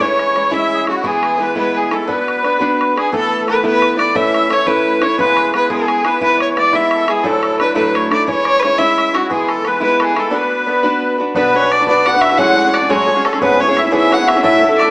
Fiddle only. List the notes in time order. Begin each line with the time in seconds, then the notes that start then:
0.01 C#5
0.54 E5
0.89 F#4
1.07 G#4
1.42 B4
1.57 B4
1.77 G#4
1.93 A4
2.11 B4
2.99 G#4
3.15 A4
3.49 B4
3.66 B4
3.98 D5
4.16 E5
4.53 C#5
4.67 B4
5.02 C#5
5.20 B4
5.55 B4
5.74 G#4
6.08 B4
6.23 B4
6.42 C#5
6.58 D5
6.75 E5
7.10 G#4
7.23 A4
7.60 B4
7.75 B4
7.95 C#5
8.12 D5
8.29 C#5
8.44 C#5 D5
8.59 B4 C#5
8.78 E5
9.14 F#4
9.31 G#4
9.49 A4
9.67 B4
9.83 B4
10.00 G#4 A4
10.20 A4
10.37 B4
11.36 B4
11.55 C#5
11.72 D5
11.88 D5
12.06 F#5
12.21 E5
12.37 F#5
12.73 D5
12.90 C#5
13.25 A4
13.42 B4
13.60 C#5
13.79 E5
13.96 E5
14.14 F#5
14.27 E5
14.42 E5
14.78 D5